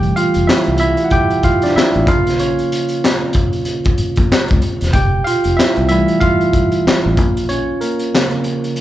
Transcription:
0.00 0.11 F1 loud
0.00 0.28 E3 medium
0.00 0.29 G3 soft
0.00 0.29 A3 medium
0.00 0.14 G4 medium
0.00 0.16 G5 medium
0.00 closed hi-hat soft
0.16 0.46 F4 medium
0.16 0.49 F5 loud
0.16 closed hi-hat medium
0.34 0.46 F1 medium
0.34 closed hi-hat soft
0.47 0.78 E4 medium
0.47 0.78 E5 loud
0.47 muted fingered electric bass stroke soft
0.47 snare loud
0.47 clap loud
0.65 0.94 C2 medium
0.65 closed hi-hat soft
0.78 1.05 E4 medium
0.78 1.07 E5 loud
0.78 closed hi-hat medium
0.97 closed hi-hat soft
1.04 1.11 F#5 medium
1.10 1.27 G4 medium
1.10 1.26 G5 loud
1.10 kick medium
1.10 closed hi-hat medium
1.30 closed hi-hat soft
1.43 1.62 F4 medium
1.43 1.64 F5 medium
1.43 kick medium
1.43 closed hi-hat medium
1.62 1.75 D4 medium
1.62 1.76 D5 medium
1.62 snare soft
1.62 closed hi-hat soft
1.76 2.06 E4 medium
1.76 2.05 E5 loud
1.76 muted fingered electric bass stroke soft
1.76 snare loud
1.76 clap medium
1.94 2.08 A1 medium
1.94 closed hi-hat soft
2.07 2.62 A#1 loud
2.07 2.99 C#3 medium
2.07 3.00 F3 soft
2.07 3.00 A#3 medium
2.07 2.38 F4 medium
2.07 2.41 F5 medium
2.07 kick loud
2.07 closed hi-hat medium
2.27 snare soft
2.27 closed hi-hat medium
2.39 4.27 C#4 medium
2.39 4.27 C#5 medium
2.39 closed hi-hat medium
2.59 closed hi-hat soft
2.72 closed hi-hat medium
2.89 closed hi-hat soft
3.04 snare loud
3.04 clap medium
3.33 kick loud
3.33 closed hi-hat medium
3.53 closed hi-hat soft
3.65 closed hi-hat medium
3.84 kick loud
3.84 closed hi-hat soft
3.98 muted fingered electric bass stroke medium
3.98 closed hi-hat medium
4.16 4.29 A#1 medium
4.16 kick medium
4.16 closed hi-hat soft
4.31 muted fingered electric bass stroke soft
4.31 snare loud
4.31 clap medium
4.48 4.62 C#2 medium
4.48 kick medium
4.48 closed hi-hat soft
4.62 closed hi-hat medium
4.81 4.93 E1 medium
4.81 snare soft
4.81 closed hi-hat soft
4.93 5.21 F1 loud
4.93 5.25 G4 medium
4.93 5.27 G5 loud
4.93 kick loud
4.93 closed hi-hat medium
5.24 5.56 F4 medium
5.24 5.58 F5 loud
5.24 closed hi-hat medium
5.44 5.56 F1 medium
5.44 closed hi-hat soft
5.57 5.88 E4 medium
5.57 5.87 E5 loud
5.57 muted fingered electric bass stroke soft
5.57 snare loud
5.57 clap loud
5.76 6.05 C2 medium
5.76 closed hi-hat soft
5.89 6.35 E3 medium
5.89 6.35 G3 medium
5.89 6.35 A3 medium
5.89 6.20 E4 medium
5.89 6.19 E5 loud
5.89 closed hi-hat medium
6.08 closed hi-hat soft
6.20 7.46 F4 medium
6.20 7.53 F5 loud
6.20 kick medium
6.20 closed hi-hat medium
6.41 closed hi-hat soft
6.53 kick medium
6.53 closed hi-hat medium
6.72 closed hi-hat soft
6.86 muted fingered electric bass stroke soft
6.86 snare loud
6.86 clap medium
7.06 7.18 A1 medium
7.17 7.72 A#1 loud
7.17 kick loud
7.17 closed hi-hat medium
7.37 closed hi-hat medium
7.49 7.80 C#4 medium
7.49 7.82 C#5 medium
7.49 closed hi-hat medium
7.81 8.14 A#3 medium
7.81 8.73 A#4 medium
7.81 closed hi-hat medium
7.99 closed hi-hat soft
8.14 8.81 C#3 medium
8.14 8.81 F3 medium
8.14 8.81 A#3 medium
8.14 snare loud
8.14 clap medium
8.31 closed hi-hat soft
8.44 closed hi-hat medium
8.64 closed hi-hat soft
8.76 closed hi-hat medium

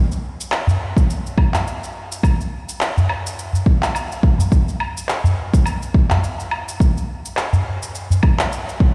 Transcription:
0.12 shaker soft
0.41 shaker medium
0.52 clap medium
0.52 low woodblock medium
0.52 shaker soft
0.67 udu medium
0.67 shaker soft
0.97 kick loud
0.97 shaker medium
1.10 shaker medium
1.26 shaker soft
1.38 kick loud
1.38 low woodblock medium
1.54 clap medium
1.54 udu medium
1.54 shaker medium
1.67 shaker soft
1.84 shaker soft
2.12 shaker medium
2.23 kick loud
2.23 low woodblock medium
2.23 shaker medium
2.41 shaker soft
2.69 shaker medium
2.81 clap medium
2.81 shaker soft
2.97 udu medium
2.97 shaker soft
3.09 low woodblock medium
3.27 shaker medium
3.39 shaker medium
3.53 udu medium
3.53 shaker soft
3.66 kick loud
3.83 clap medium
3.83 shaker medium
3.95 low woodblock medium
3.95 shaker medium
4.12 shaker soft
4.23 kick loud
4.38 udu medium
4.38 shaker medium
4.52 kick loud
4.52 shaker medium
4.68 shaker soft
4.80 low woodblock medium
4.97 shaker medium
5.09 clap medium
5.09 shaker medium
5.24 udu loud
5.24 shaker soft
5.54 kick loud
5.54 shaker medium
5.66 low woodblock medium
5.66 shaker medium
5.82 shaker soft
5.94 kick loud
6.10 clap medium
6.10 udu loud
6.10 shaker medium
6.24 shaker medium
6.40 shaker soft
6.51 low woodblock medium
6.69 shaker medium
6.80 kick loud
6.80 shaker medium
6.97 shaker soft
7.26 shaker medium
7.37 clap medium
7.37 low woodblock medium
7.37 shaker medium
7.53 udu medium
7.53 shaker soft
7.83 shaker medium
7.95 shaker medium
8.10 udu medium
8.10 shaker soft
8.23 kick loud
8.23 low woodblock medium
8.39 clap medium
8.39 shaker medium
8.52 shaker medium
8.69 shaker soft
8.80 kick loud

